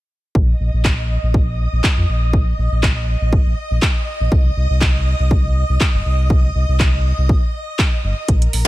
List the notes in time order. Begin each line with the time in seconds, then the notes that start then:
0.35 A#1 D#5 D#6, kick
0.60 A#1
0.73 A#1
0.85 kick, clap
1.23 A#1
1.34 kick
1.72 A#1
1.84 kick, clap
1.97 F2
2.09 A#1
2.33 kick
2.58 A#1
2.72 A#1
2.83 kick, clap
3.21 A#1
3.33 kick
3.46 A#1
3.71 A#1
3.82 kick, clap
4.20 A#1
4.32 C2, kick
4.56 C2
4.70 C2
4.81 kick, clap
5.19 C2
5.31 kick
5.69 C2
5.80 kick, clap
5.94 G1
6.05 C2
6.30 kick
6.55 C2
6.68 C2
6.80 kick, clap
7.18 C2
7.29 kick
7.79 kick, clap
8.04 G1
8.28 A#1 A#4 A#5, kick, closed hi-hat
8.42 closed hi-hat
8.53 A#1, open hi-hat